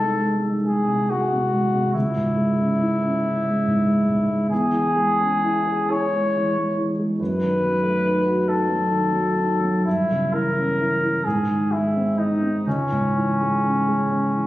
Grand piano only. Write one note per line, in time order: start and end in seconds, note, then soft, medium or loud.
0.00 1.91 C2 soft
0.00 0.87 C3 soft
0.00 0.11 G#3 soft
0.00 0.34 D#4 soft
0.20 0.56 G#3 soft
0.43 0.79 D#4 soft
0.65 1.01 G#3 soft
0.87 1.23 C3 soft
1.10 1.45 G#3 soft
1.32 1.66 C3 soft
1.53 1.87 G#3 soft
1.74 1.95 C3 soft
1.95 4.47 C#2 soft
2.16 2.50 G#2 soft
2.37 2.71 G#3 soft
2.60 2.93 C#4 soft
2.81 3.15 E4 soft
3.02 3.36 C#4 soft
3.23 3.58 E4 soft
3.44 3.79 G#3 soft
3.67 4.00 G#2 soft
3.86 4.21 G#3 soft
4.08 4.42 G#2 soft
4.29 4.51 G#3 soft
4.51 7.16 E2 soft
4.72 5.09 E3 soft
4.96 5.33 G#3 soft
5.20 5.58 C#4 soft
5.44 5.82 E4 soft
5.67 6.04 G#4 soft
5.90 6.26 E4 soft
6.13 6.48 G#3 soft
6.36 6.70 E3 soft
6.57 6.91 G#3 soft
6.78 7.11 E3 soft
6.99 7.20 G#3 soft
7.20 9.81 F#2 soft
7.41 7.75 D#3 soft
7.61 7.96 F#3 soft
7.83 8.17 A3 soft
8.05 8.39 D#4 soft
8.26 8.60 F#4 soft
8.47 8.82 D#4 soft
8.69 9.05 F#3 soft
8.91 9.28 D#3 soft
9.12 9.51 F#3 soft
9.37 9.75 D#3 soft
9.61 9.85 F#3 soft
9.86 11.21 G2 soft
10.11 10.49 C#3 soft
10.34 10.71 E3 soft
10.58 10.94 C#4 soft
10.82 11.17 E3 soft
11.03 11.26 E4 soft
11.27 12.62 G#2 soft
11.50 11.86 D#3 soft
11.74 12.10 G#3 soft
11.96 12.33 C4 soft
12.19 12.57 D#4 soft
12.42 12.66 C4 soft
12.67 14.47 C#2 soft
12.92 13.30 G#2 soft
13.16 13.54 E3 soft
13.42 13.79 G#3 soft
13.64 14.02 C#4 soft
13.88 14.26 G#3 soft
14.12 14.47 C#4 soft
14.36 14.47 E3 soft